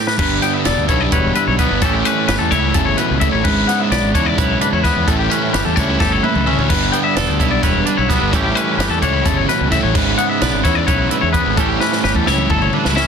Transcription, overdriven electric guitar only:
0.18 0.87 G2 medium
0.18 0.87 D3 medium
0.18 0.90 G3 loud
0.18 0.89 B3 medium
0.18 0.87 D4 medium
0.88 1.57 G2 medium
0.88 1.58 D3 medium
0.88 1.58 G3 medium
0.88 1.61 B3 medium
0.88 1.57 D4 medium
1.58 1.80 G2 medium
1.58 1.81 D3 medium
1.58 1.81 G3 medium
1.58 1.85 B3 medium
1.62 1.82 D4 medium
1.82 2.50 A2 medium
1.82 2.52 E3 medium
1.82 2.51 G3 medium
1.82 2.54 C#4 loud
1.86 2.55 E4 loud
2.51 3.20 A2 medium
2.51 3.24 E3 medium
2.51 3.21 G3 medium
2.51 3.21 C#4 medium
2.56 3.21 E4 medium
3.21 3.44 A2 medium
3.21 3.45 E3 medium
3.21 3.44 G3 medium
3.21 3.47 C#4 medium
3.21 3.48 E4 medium
3.45 4.13 G#2 medium
3.45 4.13 C#3 medium
3.45 4.14 G#3 medium
3.45 4.15 C#4 medium
3.45 4.14 E4 medium
4.14 4.83 C#3 medium
4.14 4.84 G#3 medium
4.14 4.83 C#4 medium
4.14 4.86 E4 medium
4.18 4.82 G#2 medium
4.83 5.05 G#2 medium
4.83 5.06 C#3 medium
4.83 5.06 G#3 medium
4.83 5.07 C#4 medium
4.83 5.10 E4 medium
5.06 5.75 A2 medium
5.06 5.77 E3 medium
5.06 5.78 G3 medium
5.06 5.77 C#4 medium
5.10 5.80 E4 medium
5.76 6.45 A2 medium
5.76 6.49 E3 medium
5.76 6.48 G3 medium
5.76 6.46 C#4 medium
5.80 6.46 E4 loud
6.46 6.68 A2 medium
6.46 6.70 E3 medium
6.46 6.71 G3 medium
6.46 6.69 C#4 medium
6.46 6.73 E4 medium
6.69 7.38 G2 medium
6.69 7.38 D3 medium
6.69 7.42 G3 medium
6.69 7.40 B3 medium
6.73 7.38 D4 medium
7.39 8.09 D3 medium
7.39 8.09 G3 medium
7.39 8.11 B3 medium
7.39 8.08 D4 medium
7.44 8.07 G2 medium
8.08 8.31 G2 medium
8.08 8.31 D3 medium
8.08 8.32 G3 medium
8.08 8.33 B3 medium
8.08 8.33 D4 medium
8.31 9.00 A2 medium
8.31 9.02 E3 medium
8.31 9.01 G3 loud
8.31 9.05 C#4 medium
8.35 9.05 E4 medium
9.02 9.70 A2 medium
9.02 9.74 E3 medium
9.02 9.71 G3 medium
9.02 9.72 C#4 medium
9.06 9.71 E4 medium
9.71 9.93 A2 medium
9.71 9.95 E3 medium
9.71 9.94 G3 medium
9.71 9.96 C#4 medium
9.71 9.97 E4 medium
9.94 10.62 G#2 medium
9.94 10.63 C#3 medium
9.94 10.64 G#3 medium
9.94 10.65 C#4 loud
9.94 10.63 E4 loud
10.63 11.33 C#3 medium
10.63 11.33 G#3 medium
10.63 11.33 C#4 medium
10.63 11.32 E4 medium
10.67 11.32 G#2 medium
11.33 11.55 G#2 medium
11.33 11.56 C#3 medium
11.33 11.56 G#3 medium
11.33 11.57 C#4 medium
11.37 11.57 E4 medium
11.56 12.25 A2 medium
11.56 12.25 E3 medium
11.56 12.26 G3 medium
11.56 12.27 C#4 medium
11.56 12.27 E4 loud
12.26 12.95 A2 medium
12.26 12.95 E3 medium
12.26 12.95 G3 medium
12.26 12.95 C#4 medium
12.26 12.94 E4 medium
12.95 13.07 A2 medium
12.95 13.07 E3 medium
12.95 13.07 G3 medium
12.95 13.07 C#4 medium
12.95 13.07 E4 medium

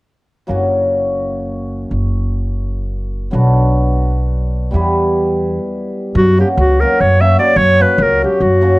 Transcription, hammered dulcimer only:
0.47 3.30 F#3 medium
0.47 3.37 A#3 medium
0.47 3.40 C#4 soft
0.47 3.34 F#4 medium
3.31 4.79 F#3 medium
3.31 4.72 B3 soft
3.31 6.46 D4 medium
3.31 4.77 F#4 medium
4.71 6.20 G3 medium
4.71 6.44 B3 medium
4.71 8.22 E4 soft
4.75 6.43 G4 medium
6.37 6.79 F#3 medium
6.37 6.53 A#3 soft
6.37 6.53 C#4 medium
6.37 6.53 F#4 medium
6.80 7.18 F#3 soft
6.80 6.95 A#3 medium
6.80 6.96 C#4 soft
6.80 6.96 F#4 medium
7.20 7.37 F#3 medium
7.20 7.34 A#3 medium
7.20 7.35 C#4 soft
7.20 7.35 F#4 medium
7.38 7.78 F#3 medium
7.38 7.52 A#3 soft
7.38 7.52 C#4 medium
7.38 7.52 F#4 medium
7.79 8.21 F#3 medium
7.79 7.94 A#3 medium
7.79 7.94 C#4 medium
7.79 7.94 F#4 medium
8.22 8.60 F#3 soft
8.22 8.36 A#3 soft
8.22 8.36 C#4 soft
8.22 8.37 F#4 medium
8.61 8.77 F#3 medium
8.61 8.75 A#3 soft
8.61 8.75 C#4 medium
8.61 8.75 F#4 medium

